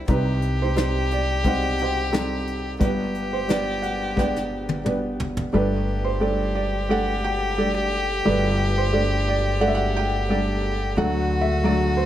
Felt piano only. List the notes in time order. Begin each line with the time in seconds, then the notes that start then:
Already playing: G3 D4 E4 G4 C5 D5 E5 G5 A5
0.08 C2 C3 G3 C4 D#4 G4 B4 D#5
0.62 D#4 G4 C5
0.76 G3 C4 D#4 C5
1.12 D5
1.44 G3 C4 D#4 C5 F#5
1.48 D#5
1.82 C5 D#5 G5
2.12 G3 C4 D#4 A4
2.79 G1 G2 G3 B3 D4 B4
2.86 D4 G4
3.33 C5
3.48 G3 B3 D4 B4 D5
3.82 F#5
4.16 G3 B3 D4 B4 G5
4.21 B4 D5
4.85 G3 B3 D4 B4
5.53 G1 G2 G3 A3 D4 A4 B4 D5
6.04 C5
6.20 G3 A3 D4 A4 D5
6.55 D5
6.89 G3 A3 D4 A4 D5 F#5
7.24 G5
7.57 G3 A3 D4 A4 D5
8.25 G1 G2 G3 A3 D4 A4 B4 D5
8.78 C5
8.93 G3 A3 D4 A4 D5
9.28 D5
9.60 G3 A3 D4 A4 D5 F#5
9.67 E5
9.75 F#5
9.96 G5
10.29 G3 A3 D4 A4 D5
10.97 D2 D3 F#3 A3 D4 A4 D5 F#5
11.41 E5
11.64 F#3 A3 D4 A4 D5
11.97 C5